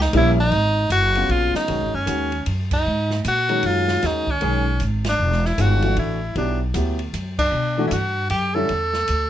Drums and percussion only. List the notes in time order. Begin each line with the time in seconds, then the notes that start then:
0.01 snare
0.13 ride
0.52 ride
0.90 hi-hat pedal, ride
1.15 ride
1.29 ride
1.54 snare
1.68 ride
2.07 hi-hat pedal, ride
2.32 ride
2.46 ride
2.71 kick, crash
3.10 snare
3.25 hi-hat pedal, ride
3.49 ride
3.63 ride
3.88 snare
4.03 snare, ride
4.27 kick
4.41 ride
4.80 hi-hat pedal, ride
5.04 snare, ride
5.32 snare
5.45 snare
5.58 hi-hat pedal, ride
5.82 ride
5.97 ride
6.36 ride
6.74 hi-hat pedal, ride
6.99 ride
7.14 hi-hat pedal, ride
7.38 kick, crash
7.91 hi-hat pedal, ride
8.30 ride
8.69 ride
8.93 snare
9.08 hi-hat pedal, ride